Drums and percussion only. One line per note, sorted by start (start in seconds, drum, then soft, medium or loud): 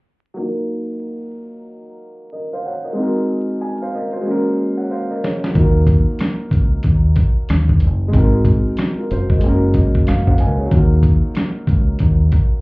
5.24 snare medium
5.44 snare medium
5.55 kick loud
5.55 closed hi-hat medium
5.87 kick medium
5.87 closed hi-hat medium
6.19 cross-stick medium
6.19 snare loud
6.19 closed hi-hat medium
6.51 kick medium
6.51 closed hi-hat medium
6.83 kick medium
6.83 closed hi-hat medium
7.16 kick medium
7.16 closed hi-hat medium
7.49 cross-stick medium
7.49 snare loud
7.49 closed hi-hat loud
7.69 kick medium
7.80 closed hi-hat medium
8.13 kick loud
8.13 closed hi-hat loud
8.45 kick medium
8.45 closed hi-hat medium
8.77 cross-stick medium
8.77 snare loud
8.77 closed hi-hat medium
9.11 closed hi-hat medium
9.30 kick medium
9.41 closed hi-hat medium
9.74 kick loud
9.74 closed hi-hat medium
9.95 kick medium
10.07 cross-stick medium
10.07 snare loud
10.07 closed hi-hat loud
10.27 kick medium
10.38 closed hi-hat medium
10.71 kick loud
10.71 closed hi-hat medium
11.03 kick medium
11.03 closed hi-hat medium
11.35 cross-stick medium
11.35 snare loud
11.35 closed hi-hat medium
11.67 kick medium
11.67 closed hi-hat medium
11.99 kick medium
11.99 closed hi-hat medium
12.32 kick loud
12.32 closed hi-hat medium